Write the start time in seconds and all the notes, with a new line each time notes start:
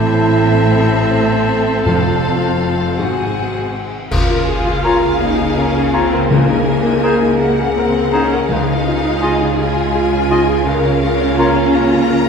Already playing: A1 A2 C4 E4 A4 C5 E5 A5
0.75 E4 A4
1.85 F1 F2 F4 A4 F5
2.97 G#1 G#2 F#4 G#4 F#5 G#5
4.11 C#2 C#3 A#3 F4 A#4 F5, concert bass drum, crash
4.30 F4
4.48 G#4
4.67 F4
4.84 F4 G#4 A#4 C#5 A#5
5.02 F4
5.21 A#3 D#4
5.39 G#4
5.57 C#4 A#4
5.76 G#4
5.93 C4 F4 C#5 A#5
6.13 A#4
6.31 C#2 C#3 A#3 G#4 A#4 G#5
6.50 D#4
6.68 G#4
6.86 D#4
7.03 G#4 A#4 C5 A#5
7.22 D#4
7.39 A#3 A#4 F#5
7.59 G#4
7.77 C4 A#4
7.96 G#4
8.12 C#4 D#4 G#4 C5 A#5
8.33 A#4
8.48 C#2 C#3 G#3 D#4 F4 G#4 F5
8.69 D#4
8.88 F4
9.05 D#4
9.21 F4 G#4 D#5 G#5
9.41 D#4
9.59 G#3 F4 G#5
9.76 F4
9.95 G#4
10.12 F4
10.29 D#4 F4 D#5 G#5
10.49 G#4
10.66 C#2 A#3 C#4 A#4 F5
10.86 C#4
11.03 F4 A#4
11.21 C#4
11.38 F4 A#4 C#5 A#5
11.56 C#4
11.74 A#3 A#5
11.92 F4
12.09 A#4